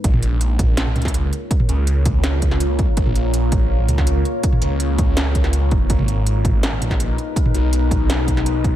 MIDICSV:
0, 0, Header, 1, 4, 480
1, 0, Start_track
1, 0, Tempo, 365854
1, 58, Time_signature, 4, 2, 24, 8
1, 11490, End_track
2, 0, Start_track
2, 0, Title_t, "Ambient pad"
2, 0, Program_c, 0, 92
2, 52, Note_on_c, 0, 65, 74
2, 53, Note_on_c, 0, 58, 80
2, 53, Note_on_c, 0, 70, 74
2, 57, Note_on_c, 0, 73, 89
2, 7682, Note_off_c, 0, 65, 0
2, 7683, Note_off_c, 0, 58, 0
2, 7683, Note_off_c, 0, 70, 0
2, 7685, Note_off_c, 0, 73, 0
2, 7737, Note_on_c, 0, 71, 91
2, 7741, Note_on_c, 0, 70, 76
2, 7742, Note_on_c, 0, 56, 83
2, 7743, Note_on_c, 0, 63, 73
2, 11490, Note_off_c, 0, 56, 0
2, 11490, Note_off_c, 0, 63, 0
2, 11490, Note_off_c, 0, 70, 0
2, 11490, Note_off_c, 0, 71, 0
2, 11490, End_track
3, 0, Start_track
3, 0, Title_t, "Detuned saw bass"
3, 0, Program_c, 1, 39
3, 56, Note_on_c, 1, 34, 101
3, 1242, Note_off_c, 1, 34, 0
3, 1259, Note_on_c, 1, 37, 81
3, 1723, Note_off_c, 1, 37, 0
3, 2220, Note_on_c, 1, 37, 104
3, 3765, Note_off_c, 1, 37, 0
3, 3900, Note_on_c, 1, 34, 98
3, 5084, Note_off_c, 1, 34, 0
3, 5097, Note_on_c, 1, 37, 76
3, 5562, Note_off_c, 1, 37, 0
3, 6060, Note_on_c, 1, 37, 100
3, 7501, Note_on_c, 1, 29, 91
3, 7521, Note_off_c, 1, 37, 0
3, 7720, Note_off_c, 1, 29, 0
3, 7740, Note_on_c, 1, 32, 102
3, 8924, Note_off_c, 1, 32, 0
3, 8944, Note_on_c, 1, 34, 78
3, 9406, Note_off_c, 1, 34, 0
3, 9900, Note_on_c, 1, 35, 108
3, 11445, Note_off_c, 1, 35, 0
3, 11490, End_track
4, 0, Start_track
4, 0, Title_t, "Drums"
4, 55, Note_on_c, 9, 36, 121
4, 55, Note_on_c, 9, 42, 86
4, 178, Note_on_c, 9, 45, 82
4, 186, Note_off_c, 9, 36, 0
4, 186, Note_off_c, 9, 42, 0
4, 295, Note_on_c, 9, 42, 64
4, 309, Note_off_c, 9, 45, 0
4, 427, Note_off_c, 9, 42, 0
4, 535, Note_on_c, 9, 42, 86
4, 666, Note_off_c, 9, 42, 0
4, 775, Note_on_c, 9, 36, 110
4, 776, Note_on_c, 9, 42, 72
4, 776, Note_on_c, 9, 45, 57
4, 906, Note_off_c, 9, 36, 0
4, 907, Note_off_c, 9, 42, 0
4, 907, Note_off_c, 9, 45, 0
4, 1014, Note_on_c, 9, 38, 119
4, 1014, Note_on_c, 9, 42, 84
4, 1138, Note_on_c, 9, 45, 38
4, 1146, Note_off_c, 9, 38, 0
4, 1146, Note_off_c, 9, 42, 0
4, 1255, Note_off_c, 9, 45, 0
4, 1255, Note_on_c, 9, 42, 31
4, 1255, Note_on_c, 9, 45, 56
4, 1334, Note_off_c, 9, 42, 0
4, 1334, Note_on_c, 9, 42, 44
4, 1378, Note_on_c, 9, 36, 64
4, 1379, Note_on_c, 9, 38, 38
4, 1386, Note_off_c, 9, 45, 0
4, 1419, Note_off_c, 9, 42, 0
4, 1419, Note_on_c, 9, 42, 57
4, 1499, Note_off_c, 9, 42, 0
4, 1499, Note_on_c, 9, 42, 86
4, 1509, Note_off_c, 9, 36, 0
4, 1511, Note_off_c, 9, 38, 0
4, 1630, Note_off_c, 9, 42, 0
4, 1741, Note_on_c, 9, 42, 38
4, 1872, Note_off_c, 9, 42, 0
4, 1977, Note_on_c, 9, 36, 120
4, 1979, Note_on_c, 9, 42, 85
4, 2097, Note_on_c, 9, 45, 79
4, 2108, Note_off_c, 9, 36, 0
4, 2110, Note_off_c, 9, 42, 0
4, 2216, Note_on_c, 9, 42, 64
4, 2228, Note_off_c, 9, 45, 0
4, 2347, Note_off_c, 9, 42, 0
4, 2455, Note_on_c, 9, 42, 84
4, 2586, Note_off_c, 9, 42, 0
4, 2696, Note_on_c, 9, 42, 72
4, 2696, Note_on_c, 9, 45, 54
4, 2698, Note_on_c, 9, 36, 113
4, 2827, Note_off_c, 9, 42, 0
4, 2827, Note_off_c, 9, 45, 0
4, 2829, Note_off_c, 9, 36, 0
4, 2933, Note_on_c, 9, 38, 119
4, 2933, Note_on_c, 9, 42, 84
4, 3065, Note_off_c, 9, 38, 0
4, 3065, Note_off_c, 9, 42, 0
4, 3176, Note_on_c, 9, 42, 72
4, 3179, Note_on_c, 9, 36, 63
4, 3298, Note_on_c, 9, 38, 40
4, 3307, Note_off_c, 9, 42, 0
4, 3310, Note_off_c, 9, 36, 0
4, 3416, Note_on_c, 9, 42, 86
4, 3430, Note_off_c, 9, 38, 0
4, 3548, Note_off_c, 9, 42, 0
4, 3657, Note_on_c, 9, 42, 38
4, 3659, Note_on_c, 9, 36, 111
4, 3788, Note_off_c, 9, 42, 0
4, 3790, Note_off_c, 9, 36, 0
4, 3896, Note_on_c, 9, 42, 84
4, 3899, Note_on_c, 9, 36, 122
4, 4021, Note_on_c, 9, 45, 79
4, 4027, Note_off_c, 9, 42, 0
4, 4031, Note_off_c, 9, 36, 0
4, 4140, Note_on_c, 9, 42, 64
4, 4152, Note_off_c, 9, 45, 0
4, 4271, Note_off_c, 9, 42, 0
4, 4377, Note_on_c, 9, 42, 87
4, 4508, Note_off_c, 9, 42, 0
4, 4617, Note_on_c, 9, 42, 69
4, 4617, Note_on_c, 9, 45, 53
4, 4619, Note_on_c, 9, 36, 116
4, 4748, Note_off_c, 9, 42, 0
4, 4748, Note_off_c, 9, 45, 0
4, 4750, Note_off_c, 9, 36, 0
4, 4980, Note_on_c, 9, 45, 38
4, 5097, Note_off_c, 9, 45, 0
4, 5097, Note_on_c, 9, 42, 70
4, 5097, Note_on_c, 9, 45, 52
4, 5220, Note_on_c, 9, 36, 64
4, 5223, Note_on_c, 9, 38, 39
4, 5228, Note_off_c, 9, 42, 0
4, 5228, Note_off_c, 9, 45, 0
4, 5338, Note_on_c, 9, 42, 84
4, 5352, Note_off_c, 9, 36, 0
4, 5354, Note_off_c, 9, 38, 0
4, 5469, Note_off_c, 9, 42, 0
4, 5580, Note_on_c, 9, 42, 37
4, 5711, Note_off_c, 9, 42, 0
4, 5818, Note_on_c, 9, 42, 80
4, 5819, Note_on_c, 9, 36, 123
4, 5938, Note_on_c, 9, 45, 73
4, 5949, Note_off_c, 9, 42, 0
4, 5950, Note_off_c, 9, 36, 0
4, 6057, Note_on_c, 9, 42, 60
4, 6069, Note_off_c, 9, 45, 0
4, 6188, Note_off_c, 9, 42, 0
4, 6297, Note_on_c, 9, 42, 80
4, 6428, Note_off_c, 9, 42, 0
4, 6540, Note_on_c, 9, 36, 114
4, 6540, Note_on_c, 9, 42, 68
4, 6540, Note_on_c, 9, 45, 52
4, 6671, Note_off_c, 9, 36, 0
4, 6671, Note_off_c, 9, 42, 0
4, 6671, Note_off_c, 9, 45, 0
4, 6780, Note_on_c, 9, 38, 122
4, 6780, Note_on_c, 9, 42, 77
4, 6911, Note_off_c, 9, 38, 0
4, 6911, Note_off_c, 9, 42, 0
4, 7020, Note_on_c, 9, 36, 63
4, 7020, Note_on_c, 9, 42, 67
4, 7138, Note_on_c, 9, 38, 37
4, 7151, Note_off_c, 9, 36, 0
4, 7151, Note_off_c, 9, 42, 0
4, 7256, Note_on_c, 9, 42, 81
4, 7269, Note_off_c, 9, 38, 0
4, 7387, Note_off_c, 9, 42, 0
4, 7495, Note_on_c, 9, 42, 35
4, 7495, Note_on_c, 9, 45, 35
4, 7499, Note_on_c, 9, 36, 115
4, 7627, Note_off_c, 9, 42, 0
4, 7627, Note_off_c, 9, 45, 0
4, 7630, Note_off_c, 9, 36, 0
4, 7737, Note_on_c, 9, 42, 77
4, 7739, Note_on_c, 9, 36, 118
4, 7861, Note_on_c, 9, 45, 77
4, 7869, Note_off_c, 9, 42, 0
4, 7870, Note_off_c, 9, 36, 0
4, 7978, Note_on_c, 9, 42, 57
4, 7992, Note_off_c, 9, 45, 0
4, 8109, Note_off_c, 9, 42, 0
4, 8220, Note_on_c, 9, 42, 78
4, 8351, Note_off_c, 9, 42, 0
4, 8458, Note_on_c, 9, 36, 109
4, 8462, Note_on_c, 9, 42, 65
4, 8462, Note_on_c, 9, 45, 52
4, 8589, Note_off_c, 9, 36, 0
4, 8593, Note_off_c, 9, 42, 0
4, 8593, Note_off_c, 9, 45, 0
4, 8701, Note_on_c, 9, 38, 120
4, 8701, Note_on_c, 9, 42, 74
4, 8825, Note_on_c, 9, 45, 36
4, 8832, Note_off_c, 9, 38, 0
4, 8832, Note_off_c, 9, 42, 0
4, 8945, Note_off_c, 9, 45, 0
4, 8945, Note_on_c, 9, 42, 65
4, 8945, Note_on_c, 9, 45, 52
4, 9059, Note_on_c, 9, 36, 63
4, 9065, Note_on_c, 9, 38, 38
4, 9076, Note_off_c, 9, 42, 0
4, 9076, Note_off_c, 9, 45, 0
4, 9185, Note_on_c, 9, 42, 80
4, 9191, Note_off_c, 9, 36, 0
4, 9197, Note_off_c, 9, 38, 0
4, 9316, Note_off_c, 9, 42, 0
4, 9425, Note_on_c, 9, 42, 36
4, 9556, Note_off_c, 9, 42, 0
4, 9659, Note_on_c, 9, 36, 113
4, 9664, Note_on_c, 9, 42, 77
4, 9782, Note_on_c, 9, 45, 77
4, 9791, Note_off_c, 9, 36, 0
4, 9795, Note_off_c, 9, 42, 0
4, 9899, Note_on_c, 9, 42, 59
4, 9914, Note_off_c, 9, 45, 0
4, 10030, Note_off_c, 9, 42, 0
4, 10139, Note_on_c, 9, 42, 77
4, 10270, Note_off_c, 9, 42, 0
4, 10380, Note_on_c, 9, 36, 107
4, 10383, Note_on_c, 9, 42, 64
4, 10383, Note_on_c, 9, 45, 52
4, 10511, Note_off_c, 9, 36, 0
4, 10514, Note_off_c, 9, 42, 0
4, 10514, Note_off_c, 9, 45, 0
4, 10623, Note_on_c, 9, 38, 113
4, 10623, Note_on_c, 9, 42, 74
4, 10754, Note_off_c, 9, 38, 0
4, 10754, Note_off_c, 9, 42, 0
4, 10859, Note_on_c, 9, 36, 59
4, 10862, Note_on_c, 9, 42, 65
4, 10984, Note_on_c, 9, 38, 36
4, 10991, Note_off_c, 9, 36, 0
4, 10993, Note_off_c, 9, 42, 0
4, 11102, Note_on_c, 9, 42, 79
4, 11115, Note_off_c, 9, 38, 0
4, 11233, Note_off_c, 9, 42, 0
4, 11340, Note_on_c, 9, 36, 103
4, 11342, Note_on_c, 9, 42, 35
4, 11471, Note_off_c, 9, 36, 0
4, 11474, Note_off_c, 9, 42, 0
4, 11490, End_track
0, 0, End_of_file